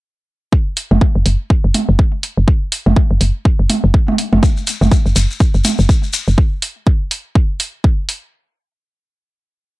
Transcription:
0.53 kick
0.77 open hi-hat
0.91 F#1, high tom
1.01 kick
1.15 F#1
1.26 F#1, open hi-hat
1.50 kick
1.64 F#1
1.74 open hi-hat, high tom
1.89 F#1
1.99 kick
2.23 open hi-hat
2.37 F#1
2.48 kick
2.72 open hi-hat
2.86 F#1, high tom
2.96 kick
3.11 F#1
3.21 F#1, open hi-hat
3.45 kick
3.59 F#1
3.70 open hi-hat, high tom
3.84 F#1
3.94 kick
4.08 high tom
4.18 open hi-hat
4.33 F#1, high tom
4.43 kick, shekere
4.57 shekere
4.67 open hi-hat, shekere
4.81 F#1, high tom, shekere
4.92 kick, shekere
5.06 F#1, shekere
5.16 F#1, open hi-hat, shekere
5.30 shekere
5.40 kick, shekere
5.54 F#1, shekere
5.64 open hi-hat, high tom, shekere
5.78 F#1, shekere
5.89 kick, shekere
6.03 shekere
6.13 open hi-hat, shekere
6.28 F#1, shekere
6.38 kick
6.62 open hi-hat
6.87 kick
7.11 open hi-hat
7.35 kick
7.60 open hi-hat
7.84 kick
8.09 open hi-hat

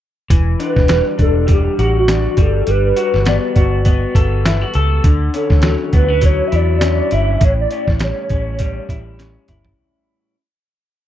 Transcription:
0.30 E1 E3, kick, closed hi-hat
0.60 D4, closed hi-hat
0.64 B4
0.76 E1, kick, snare
0.88 G3, snare, closed hi-hat
1.18 E1 D4 A4, kick, closed hi-hat
1.47 G3, kick, closed hi-hat
1.53 G4
1.79 A1 F#4, closed hi-hat
1.99 F#4
2.08 D4, snare, closed hi-hat
2.37 G1 G3, kick, closed hi-hat
2.41 A4
2.67 G1 G3 B4, closed hi-hat
2.96 F#4 B4, closed hi-hat
3.14 G1, snare
3.25 B3 D5, snare, closed hi-hat
3.56 G1 F#4, kick, closed hi-hat
3.85 B3, kick, closed hi-hat
4.15 G1 A4, kick, closed hi-hat
4.46 E4, snare, closed hi-hat
4.62 F#4
4.74 C#2 A4, closed hi-hat
5.04 D2 D3, kick, closed hi-hat
5.34 C#4 A4, closed hi-hat
5.50 D2, kick, snare
5.62 F#3, snare, closed hi-hat
5.93 D2 B3 B4, kick, closed hi-hat
6.08 C#4
6.21 F#3 C#5, kick, closed hi-hat
6.48 E5
6.52 E2 E4 D5, closed hi-hat
6.81 C#4, snare, closed hi-hat
7.11 G1 E4 E5, closed hi-hat
7.41 A1 A2 C#5, kick, closed hi-hat
7.61 D5
7.71 C#4, closed hi-hat
7.75 D5
7.88 A1, kick, snare
8.00 G3, snare, closed hi-hat
8.04 C#5
8.30 A1 C#4, kick, closed hi-hat
8.59 G3, kick, closed hi-hat
8.89 A1 E4, kick, closed hi-hat
9.19 C#4, snare, closed hi-hat
9.48 G1 E4, closed hi-hat, mid tom
9.65 floor tom

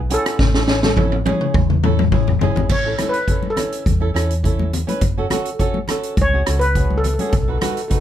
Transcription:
Already playing: B1 B4
0.10 B3 C#4 E4 G#4 A4, closed hi-hat
0.26 cross-stick, closed hi-hat
0.39 A1, kick, snare
0.54 C#4 E4 A4, snare
0.68 C#4 E4 A4, snare
0.83 C#4 E4 A4, snare, high conga, low conga
0.97 C#4 E4 A4, kick, high tom
1.12 high tom
1.25 C#4 E4 G#4, high tom, high conga, low conga
1.41 mid tom
1.54 E2, kick, mid tom, high conga
1.70 mid tom
1.83 C#4 E4 A4, mid tom
1.99 mid tom, high conga
2.12 C#4 E4 G#4, kick, mid tom
2.27 E1, floor tom, high conga
2.41 F#1 C#4 E4 G#4, floor tom, low conga
2.56 G#1, floor tom, low conga
2.69 A1 C#5, kick, crash, low conga
2.85 C#4 E4 A4
2.98 C#4 E4 A4, cross-stick, closed hi-hat, high conga, low conga
3.09 B4
3.13 closed hi-hat
3.28 C#4 E4 A4, kick, closed hi-hat
3.43 high conga
3.50 A4
3.56 C#4 E4 A4, cross-stick, closed hi-hat, low conga
3.72 closed hi-hat
3.86 E2, kick, closed hi-hat, high conga
4.00 C#4 E4 A4
4.14 E2 C#4 E4 A4, cross-stick, closed hi-hat
4.31 closed hi-hat
4.43 C#4 E4 A4, kick, closed hi-hat
4.59 high conga
4.73 closed hi-hat, low conga
4.87 C#4 E4 B4, closed hi-hat, high conga
5.01 F#1, kick, closed hi-hat, low conga
5.17 C#4 F#4 A4
5.30 C#4 F#4 A4, cross-stick, closed hi-hat, high conga, low conga
5.45 closed hi-hat
5.59 C#4 F#4 A4, kick, closed hi-hat
5.74 high conga
5.88 C#4 F#4 A4, cross-stick, closed hi-hat, low conga
6.03 closed hi-hat
6.17 C#2, kick, closed hi-hat, high conga
6.22 C#5
6.33 C#4 F#4 G#4
6.46 C#2 C#4 F#4 A4, cross-stick, closed hi-hat
6.59 B4, closed hi-hat
6.75 C#4 F#4 G#4, kick, closed hi-hat
6.90 high conga
6.98 A4
7.04 A4, closed hi-hat, low conga
7.14 A4
7.19 C#4 F#4 G#4 A4, closed hi-hat, high conga
7.29 B1 A4, kick, closed hi-hat, low conga
7.37 A4
7.43 A4
7.48 D#4 F#4 A4 B4
7.58 D#4 F#4 A4, cross-stick, closed hi-hat
7.62 A4 B4, high conga, low conga
7.74 A4, closed hi-hat
7.81 A4
7.88 D#4 F#4 A4 B4, kick, closed hi-hat
7.96 A4

